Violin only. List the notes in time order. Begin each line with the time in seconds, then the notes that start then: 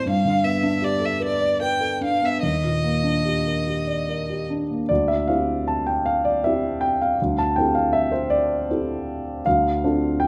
0.10 F5
0.44 E5
0.84 D5
1.05 E5
1.25 D5
1.62 G5
2.04 F5
2.25 E5
2.43 D#5